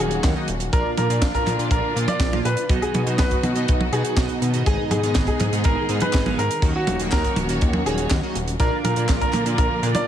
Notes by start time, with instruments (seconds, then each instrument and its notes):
Already playing: string section D#3 F#3 A#3 C#4 F#4
0.00 analog synth bass D#1, analog polysynth D#3 A#3 D#4 F#4 C#5, grand piano G#4
0.11 closed hi-hat
0.24 analog synth bass D#2, kick, snare, clap, closed hi-hat
0.36 analog polysynth D#3 A#3 D#4 F#4 D#5
0.48 analog synth bass D#1, closed hi-hat
0.60 closed hi-hat
0.73 analog synth bass A#1, string section A#2 D3 F3 D4 F4, analog polysynth A#2 A#3 D4 F4 D5, grand piano A#4, kick, closed hi-hat
0.97 analog synth bass A#2, grand piano A#4, closed hi-hat, high tom
1.10 analog synth bass A#2, analog polysynth A#2 A#3 D4 F4 D5, closed hi-hat
1.22 analog synth bass A#1, kick, snare, clap, closed hi-hat
1.34 grand piano A#4, kick, closed hi-hat
1.47 analog synth bass A#2, clap, closed hi-hat, high tom
1.59 analog synth bass A#2, analog polysynth A#2 A#3 D4 F4 D5, closed hi-hat
1.71 analog synth bass A#1, grand piano A#4, kick, closed hi-hat
1.96 analog polysynth A#2 A#3 D4 F4 D5, analog synth bass A#2, closed hi-hat
2.08 grand piano D5, closed hi-hat, high tom
2.20 analog synth bass A#1, kick, snare, clap, closed hi-hat
2.33 analog polysynth A#2 A#3 D4 F4 F5, high tom
2.45 analog synth bass A#2, grand piano B4, closed hi-hat
2.57 closed hi-hat
2.69 analog synth bass B1, string section B2 D#3 F#3 D#4 F#4, analog polysynth B2 B3 D#4 F#4 D#5, kick, closed hi-hat
2.82 grand piano G#4, closed hi-hat
2.94 analog synth bass B2, closed hi-hat, high tom
3.06 analog synth bass B2, analog polysynth B2 B3 D#4 F#4 D#5, closed hi-hat
3.18 analog synth bass B1, grand piano B4, kick, snare, clap, closed hi-hat
3.31 kick, closed hi-hat
3.43 analog synth bass B2, closed hi-hat, high tom
3.55 analog synth bass B2, analog polysynth B2 B3 D#4 F#4 D#5, closed hi-hat
3.68 analog synth bass B1, kick, closed hi-hat
3.81 high tom
3.92 analog synth bass B2, analog polysynth B2 B3 D#4 F#4 F#5, grand piano G#4, closed hi-hat
4.05 closed hi-hat
4.17 analog synth bass B1, analog polysynth B2 B3 D#4 F#4 D#5, kick, snare, clap, closed hi-hat
4.29 closed hi-hat
4.42 analog synth bass B2, closed hi-hat
4.54 analog polysynth G#2 B3 D#4 F#4 D#5, closed hi-hat
4.66 analog synth bass G#1, analog polysynth G#2 B3 D#4 G#4 D#5, string section G#3 G#4, grand piano G#4, kick, closed hi-hat
4.91 analog synth bass G#2, grand piano G#4, closed hi-hat, high tom
5.03 analog synth bass G#2, analog polysynth G#2 B3 D#4 G#4 D#5, closed hi-hat
5.15 analog synth bass G#1, kick, snare, clap, closed hi-hat
5.27 grand piano G#4, kick, closed hi-hat
5.40 analog synth bass G#2, clap, closed hi-hat, high tom
5.52 analog polysynth G#2 B3 D#4 G#4 D#5, analog synth bass G#2, closed hi-hat
5.64 analog synth bass G#1, grand piano A#4, kick, closed hi-hat
5.89 analog synth bass G#2, analog polysynth G#2 B3 D#4 G#4 D#5, closed hi-hat
6.00 grand piano B4, closed hi-hat, high tom
6.13 analog synth bass G#1, kick, snare, clap, closed hi-hat
6.26 analog polysynth G#2 B3 D#4 G#4 F5, high tom
6.38 analog synth bass G#2, grand piano A#4, closed hi-hat
6.51 closed hi-hat
6.62 analog synth bass D#2, analog polysynth D#3 A#3 D#4 F#4 C#5, string section F#3 A#3 C#4 F#4, kick, closed hi-hat
6.76 grand piano F#4
6.87 analog synth bass D#1, closed hi-hat, high tom
7.00 analog synth bass D#1, analog polysynth D#3 A#3 D#4 F#4 C#5, closed hi-hat
7.12 analog synth bass D#2, grand piano A#4, kick, snare, clap, closed hi-hat
7.24 kick, closed hi-hat
7.36 analog synth bass D#1, closed hi-hat, high tom
7.49 analog synth bass D#1, analog polysynth D#3 A#3 D#4 F#4 C#5, closed hi-hat
7.61 analog synth bass D#2, kick, closed hi-hat
7.73 high tom
7.86 analog synth bass D#1, analog polysynth D#3 A#3 D#4 F#4 C#5, grand piano G#4, closed hi-hat
7.98 closed hi-hat
8.10 analog synth bass D#2, kick, snare, clap, closed hi-hat
8.23 analog polysynth D#3 A#3 D#4 F#4 D#5
8.35 analog synth bass D#1, closed hi-hat
8.48 closed hi-hat
8.60 analog synth bass A#1, analog polysynth A#2 A#3 D4 F4 D5, string section D3 F3 A#3 F4 A#4, grand piano A#4, kick, closed hi-hat
8.84 analog synth bass A#2, grand piano A#4, closed hi-hat, high tom
8.96 analog synth bass A#2, analog polysynth A#2 A#3 D4 F4 D5, closed hi-hat
9.09 analog synth bass A#1, kick, snare, clap, closed hi-hat
9.21 grand piano A#4, kick, closed hi-hat
9.33 analog synth bass A#2, clap, closed hi-hat, high tom
9.46 analog synth bass A#2, analog polysynth A#2 A#3 D4 F4 D5, closed hi-hat
9.58 analog synth bass A#1, grand piano A#4, kick, closed hi-hat
9.83 analog synth bass A#2, analog polysynth A#2 A#3 D4 F4 D5, closed hi-hat
9.95 grand piano D5, closed hi-hat, high tom